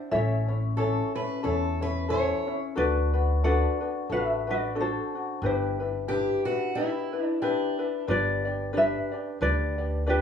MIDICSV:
0, 0, Header, 1, 5, 480
1, 0, Start_track
1, 0, Key_signature, 1, "major"
1, 0, Tempo, 663717
1, 82, Time_signature, 4, 2, 24, 8
1, 7387, End_track
2, 0, Start_track
2, 0, Title_t, "Ukulele"
2, 0, Program_c, 0, 24
2, 0, Note_on_c, 0, 78, 82
2, 80, Note_off_c, 0, 78, 0
2, 83, Note_on_c, 0, 76, 76
2, 109, Note_on_c, 0, 73, 58
2, 1493, Note_off_c, 0, 76, 0
2, 1506, Note_off_c, 0, 73, 0
2, 2007, Note_on_c, 0, 74, 94
2, 2016, Note_on_c, 0, 71, 66
2, 2460, Note_off_c, 0, 71, 0
2, 2487, Note_off_c, 0, 74, 0
2, 2490, Note_on_c, 0, 78, 92
2, 2495, Note_on_c, 0, 74, 71
2, 2940, Note_off_c, 0, 74, 0
2, 2979, Note_off_c, 0, 78, 0
2, 2982, Note_on_c, 0, 76, 88
2, 2988, Note_on_c, 0, 71, 70
2, 3228, Note_off_c, 0, 71, 0
2, 3251, Note_off_c, 0, 76, 0
2, 3258, Note_on_c, 0, 74, 84
2, 3263, Note_on_c, 0, 71, 65
2, 3443, Note_off_c, 0, 71, 0
2, 3461, Note_off_c, 0, 74, 0
2, 3475, Note_on_c, 0, 72, 71
2, 3481, Note_on_c, 0, 69, 55
2, 3913, Note_off_c, 0, 69, 0
2, 3947, Note_on_c, 0, 67, 53
2, 3948, Note_on_c, 0, 71, 61
2, 3953, Note_off_c, 0, 72, 0
2, 5345, Note_off_c, 0, 71, 0
2, 5346, Note_off_c, 0, 67, 0
2, 5857, Note_on_c, 0, 71, 75
2, 5865, Note_on_c, 0, 74, 95
2, 6300, Note_off_c, 0, 71, 0
2, 6340, Note_off_c, 0, 74, 0
2, 6343, Note_on_c, 0, 71, 78
2, 6348, Note_on_c, 0, 76, 83
2, 6783, Note_off_c, 0, 71, 0
2, 6810, Note_on_c, 0, 71, 74
2, 6815, Note_on_c, 0, 74, 95
2, 6827, Note_off_c, 0, 76, 0
2, 7255, Note_off_c, 0, 71, 0
2, 7298, Note_on_c, 0, 67, 64
2, 7301, Note_off_c, 0, 74, 0
2, 7304, Note_on_c, 0, 71, 73
2, 7387, Note_off_c, 0, 67, 0
2, 7387, Note_off_c, 0, 71, 0
2, 7387, End_track
3, 0, Start_track
3, 0, Title_t, "Steel-string acoustic guitar"
3, 0, Program_c, 1, 25
3, 556, Note_on_c, 1, 69, 75
3, 810, Note_off_c, 1, 69, 0
3, 835, Note_on_c, 1, 71, 76
3, 1037, Note_off_c, 1, 71, 0
3, 1040, Note_on_c, 1, 69, 79
3, 1317, Note_off_c, 1, 69, 0
3, 1319, Note_on_c, 1, 71, 92
3, 1517, Note_off_c, 1, 71, 0
3, 1520, Note_on_c, 1, 73, 94
3, 1870, Note_off_c, 1, 73, 0
3, 4400, Note_on_c, 1, 67, 99
3, 4664, Note_off_c, 1, 67, 0
3, 4667, Note_on_c, 1, 66, 88
3, 4883, Note_on_c, 1, 64, 82
3, 4886, Note_off_c, 1, 66, 0
3, 5259, Note_off_c, 1, 64, 0
3, 5259, Note_on_c, 1, 62, 82
3, 5362, Note_off_c, 1, 62, 0
3, 5364, Note_on_c, 1, 62, 71
3, 5814, Note_off_c, 1, 62, 0
3, 7387, End_track
4, 0, Start_track
4, 0, Title_t, "Ukulele"
4, 0, Program_c, 2, 24
4, 0, Note_on_c, 2, 62, 42
4, 0, Note_on_c, 2, 64, 43
4, 0, Note_on_c, 2, 72, 50
4, 76, Note_off_c, 2, 64, 0
4, 79, Note_off_c, 2, 62, 0
4, 81, Note_off_c, 2, 72, 0
4, 82, Note_on_c, 2, 61, 80
4, 84, Note_on_c, 2, 64, 80
4, 84, Note_on_c, 2, 69, 77
4, 90, Note_on_c, 2, 73, 85
4, 340, Note_off_c, 2, 73, 0
4, 345, Note_off_c, 2, 64, 0
4, 346, Note_off_c, 2, 69, 0
4, 349, Note_on_c, 2, 73, 50
4, 351, Note_off_c, 2, 61, 0
4, 353, Note_on_c, 2, 64, 46
4, 360, Note_on_c, 2, 61, 38
4, 553, Note_off_c, 2, 61, 0
4, 555, Note_off_c, 2, 64, 0
4, 557, Note_off_c, 2, 73, 0
4, 559, Note_on_c, 2, 69, 73
4, 562, Note_on_c, 2, 61, 81
4, 564, Note_on_c, 2, 64, 81
4, 565, Note_on_c, 2, 73, 81
4, 824, Note_off_c, 2, 73, 0
4, 831, Note_off_c, 2, 69, 0
4, 832, Note_off_c, 2, 61, 0
4, 832, Note_off_c, 2, 64, 0
4, 832, Note_on_c, 2, 73, 55
4, 841, Note_on_c, 2, 64, 50
4, 845, Note_on_c, 2, 61, 47
4, 1028, Note_off_c, 2, 61, 0
4, 1034, Note_off_c, 2, 64, 0
4, 1034, Note_on_c, 2, 69, 69
4, 1036, Note_on_c, 2, 61, 72
4, 1038, Note_off_c, 2, 73, 0
4, 1043, Note_on_c, 2, 64, 67
4, 1046, Note_on_c, 2, 73, 74
4, 1301, Note_off_c, 2, 73, 0
4, 1308, Note_off_c, 2, 69, 0
4, 1310, Note_off_c, 2, 61, 0
4, 1310, Note_on_c, 2, 73, 52
4, 1311, Note_off_c, 2, 64, 0
4, 1320, Note_on_c, 2, 61, 45
4, 1320, Note_on_c, 2, 64, 54
4, 1506, Note_off_c, 2, 61, 0
4, 1508, Note_on_c, 2, 69, 79
4, 1510, Note_off_c, 2, 64, 0
4, 1514, Note_off_c, 2, 73, 0
4, 1515, Note_on_c, 2, 61, 79
4, 1519, Note_on_c, 2, 64, 92
4, 1523, Note_on_c, 2, 73, 86
4, 1778, Note_off_c, 2, 73, 0
4, 1784, Note_off_c, 2, 64, 0
4, 1786, Note_off_c, 2, 69, 0
4, 1787, Note_on_c, 2, 73, 58
4, 1789, Note_off_c, 2, 61, 0
4, 1793, Note_on_c, 2, 64, 52
4, 1799, Note_on_c, 2, 61, 46
4, 1992, Note_on_c, 2, 69, 72
4, 1994, Note_off_c, 2, 61, 0
4, 1996, Note_off_c, 2, 64, 0
4, 1996, Note_on_c, 2, 62, 76
4, 1999, Note_off_c, 2, 73, 0
4, 1999, Note_on_c, 2, 66, 78
4, 2002, Note_on_c, 2, 71, 82
4, 2258, Note_off_c, 2, 71, 0
4, 2264, Note_off_c, 2, 66, 0
4, 2267, Note_on_c, 2, 71, 51
4, 2268, Note_off_c, 2, 69, 0
4, 2270, Note_off_c, 2, 62, 0
4, 2273, Note_on_c, 2, 66, 43
4, 2279, Note_on_c, 2, 62, 39
4, 2479, Note_off_c, 2, 71, 0
4, 2482, Note_off_c, 2, 62, 0
4, 2482, Note_off_c, 2, 66, 0
4, 2486, Note_on_c, 2, 69, 81
4, 2491, Note_on_c, 2, 62, 78
4, 2497, Note_on_c, 2, 66, 76
4, 2498, Note_on_c, 2, 71, 79
4, 2743, Note_off_c, 2, 71, 0
4, 2750, Note_off_c, 2, 66, 0
4, 2752, Note_on_c, 2, 71, 50
4, 2755, Note_off_c, 2, 69, 0
4, 2757, Note_off_c, 2, 62, 0
4, 2759, Note_on_c, 2, 66, 47
4, 2768, Note_on_c, 2, 62, 43
4, 2959, Note_off_c, 2, 62, 0
4, 2961, Note_on_c, 2, 69, 61
4, 2962, Note_off_c, 2, 71, 0
4, 2965, Note_off_c, 2, 66, 0
4, 2968, Note_on_c, 2, 62, 66
4, 2975, Note_on_c, 2, 66, 69
4, 2978, Note_on_c, 2, 71, 65
4, 3224, Note_off_c, 2, 71, 0
4, 3232, Note_off_c, 2, 66, 0
4, 3233, Note_off_c, 2, 69, 0
4, 3233, Note_on_c, 2, 71, 48
4, 3236, Note_off_c, 2, 62, 0
4, 3240, Note_on_c, 2, 66, 45
4, 3247, Note_on_c, 2, 62, 37
4, 3433, Note_off_c, 2, 71, 0
4, 3434, Note_off_c, 2, 62, 0
4, 3434, Note_off_c, 2, 66, 0
4, 3436, Note_on_c, 2, 69, 66
4, 3442, Note_on_c, 2, 62, 78
4, 3443, Note_on_c, 2, 66, 78
4, 3710, Note_off_c, 2, 69, 0
4, 3713, Note_off_c, 2, 62, 0
4, 3713, Note_off_c, 2, 66, 0
4, 3724, Note_on_c, 2, 66, 47
4, 3734, Note_on_c, 2, 62, 40
4, 3920, Note_off_c, 2, 62, 0
4, 3924, Note_off_c, 2, 66, 0
4, 3925, Note_on_c, 2, 67, 67
4, 3927, Note_on_c, 2, 64, 76
4, 3929, Note_on_c, 2, 62, 70
4, 3931, Note_on_c, 2, 71, 73
4, 4185, Note_off_c, 2, 71, 0
4, 4194, Note_on_c, 2, 71, 47
4, 4195, Note_off_c, 2, 67, 0
4, 4196, Note_off_c, 2, 64, 0
4, 4197, Note_off_c, 2, 62, 0
4, 4205, Note_on_c, 2, 64, 44
4, 4209, Note_on_c, 2, 62, 41
4, 4391, Note_off_c, 2, 62, 0
4, 4397, Note_on_c, 2, 67, 76
4, 4399, Note_off_c, 2, 71, 0
4, 4400, Note_off_c, 2, 64, 0
4, 4400, Note_on_c, 2, 62, 76
4, 4408, Note_on_c, 2, 71, 83
4, 4409, Note_on_c, 2, 64, 75
4, 4662, Note_off_c, 2, 71, 0
4, 4670, Note_on_c, 2, 71, 55
4, 4671, Note_off_c, 2, 67, 0
4, 4672, Note_off_c, 2, 62, 0
4, 4672, Note_off_c, 2, 64, 0
4, 4681, Note_on_c, 2, 64, 48
4, 4689, Note_on_c, 2, 62, 47
4, 4881, Note_off_c, 2, 71, 0
4, 4882, Note_off_c, 2, 62, 0
4, 4883, Note_on_c, 2, 67, 60
4, 4886, Note_off_c, 2, 64, 0
4, 4891, Note_on_c, 2, 62, 63
4, 4894, Note_on_c, 2, 64, 62
4, 4897, Note_on_c, 2, 71, 67
4, 5145, Note_off_c, 2, 71, 0
4, 5151, Note_off_c, 2, 64, 0
4, 5154, Note_off_c, 2, 67, 0
4, 5154, Note_on_c, 2, 71, 51
4, 5157, Note_off_c, 2, 62, 0
4, 5160, Note_on_c, 2, 64, 49
4, 5170, Note_on_c, 2, 62, 42
4, 5362, Note_off_c, 2, 62, 0
4, 5362, Note_off_c, 2, 64, 0
4, 5363, Note_off_c, 2, 71, 0
4, 5365, Note_on_c, 2, 67, 79
4, 5370, Note_on_c, 2, 62, 78
4, 5370, Note_on_c, 2, 64, 82
4, 5375, Note_on_c, 2, 71, 77
4, 5623, Note_off_c, 2, 71, 0
4, 5629, Note_off_c, 2, 64, 0
4, 5632, Note_on_c, 2, 71, 51
4, 5634, Note_off_c, 2, 67, 0
4, 5637, Note_off_c, 2, 62, 0
4, 5637, Note_on_c, 2, 64, 47
4, 5644, Note_on_c, 2, 62, 40
4, 5831, Note_off_c, 2, 71, 0
4, 5836, Note_off_c, 2, 62, 0
4, 5840, Note_on_c, 2, 71, 78
4, 5844, Note_off_c, 2, 64, 0
4, 5844, Note_on_c, 2, 62, 74
4, 5847, Note_on_c, 2, 67, 73
4, 5851, Note_on_c, 2, 74, 85
4, 6102, Note_off_c, 2, 74, 0
4, 6111, Note_off_c, 2, 71, 0
4, 6111, Note_on_c, 2, 74, 52
4, 6114, Note_off_c, 2, 62, 0
4, 6115, Note_off_c, 2, 67, 0
4, 6125, Note_on_c, 2, 67, 50
4, 6128, Note_on_c, 2, 62, 43
4, 6309, Note_off_c, 2, 62, 0
4, 6312, Note_off_c, 2, 67, 0
4, 6313, Note_on_c, 2, 71, 72
4, 6317, Note_off_c, 2, 74, 0
4, 6318, Note_on_c, 2, 62, 81
4, 6321, Note_on_c, 2, 67, 77
4, 6325, Note_on_c, 2, 74, 84
4, 6584, Note_off_c, 2, 74, 0
4, 6587, Note_off_c, 2, 71, 0
4, 6590, Note_off_c, 2, 62, 0
4, 6592, Note_off_c, 2, 67, 0
4, 6593, Note_on_c, 2, 74, 55
4, 6605, Note_on_c, 2, 67, 48
4, 6610, Note_on_c, 2, 62, 43
4, 6800, Note_off_c, 2, 62, 0
4, 6801, Note_off_c, 2, 74, 0
4, 6804, Note_off_c, 2, 67, 0
4, 6804, Note_on_c, 2, 71, 61
4, 6809, Note_on_c, 2, 62, 60
4, 6812, Note_on_c, 2, 67, 67
4, 6819, Note_on_c, 2, 74, 61
4, 7065, Note_off_c, 2, 74, 0
4, 7069, Note_off_c, 2, 67, 0
4, 7073, Note_off_c, 2, 71, 0
4, 7074, Note_on_c, 2, 74, 60
4, 7075, Note_off_c, 2, 62, 0
4, 7078, Note_on_c, 2, 67, 49
4, 7090, Note_on_c, 2, 62, 42
4, 7272, Note_off_c, 2, 62, 0
4, 7276, Note_off_c, 2, 67, 0
4, 7277, Note_off_c, 2, 74, 0
4, 7278, Note_on_c, 2, 71, 69
4, 7281, Note_on_c, 2, 62, 68
4, 7285, Note_on_c, 2, 67, 81
4, 7286, Note_on_c, 2, 74, 78
4, 7387, Note_off_c, 2, 62, 0
4, 7387, Note_off_c, 2, 67, 0
4, 7387, Note_off_c, 2, 71, 0
4, 7387, Note_off_c, 2, 74, 0
4, 7387, End_track
5, 0, Start_track
5, 0, Title_t, "Upright bass"
5, 0, Program_c, 3, 32
5, 86, Note_on_c, 3, 33, 96
5, 709, Note_off_c, 3, 33, 0
5, 1049, Note_on_c, 3, 40, 85
5, 1671, Note_off_c, 3, 40, 0
5, 2005, Note_on_c, 3, 38, 93
5, 2628, Note_off_c, 3, 38, 0
5, 2962, Note_on_c, 3, 33, 85
5, 3586, Note_off_c, 3, 33, 0
5, 3918, Note_on_c, 3, 31, 93
5, 4544, Note_off_c, 3, 31, 0
5, 5845, Note_on_c, 3, 31, 102
5, 6467, Note_off_c, 3, 31, 0
5, 6803, Note_on_c, 3, 38, 88
5, 7387, Note_off_c, 3, 38, 0
5, 7387, End_track
0, 0, End_of_file